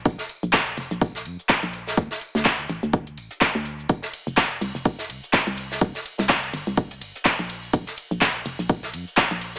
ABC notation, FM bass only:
X:1
M:4/4
L:1/16
Q:"Swing 16ths" 1/4=125
K:Bblyd
V:1 name="FM bass" clef=bass
B,,, z2 B,,,3 F,,, B,,,3 F,, z2 B,,,3 | D,, z2 D,,3 A,,, D,,3 A,,, z2 D,,3 | F,,, z2 F,,,3 C,, F,,,3 C,, z2 C,,3 | C,, z2 C,,3 G,,, C,,3 G,,, z2 B,,,3 |
B,,, z2 B,,,3 F,,, B,,,3 F,, z2 B,,,3 |]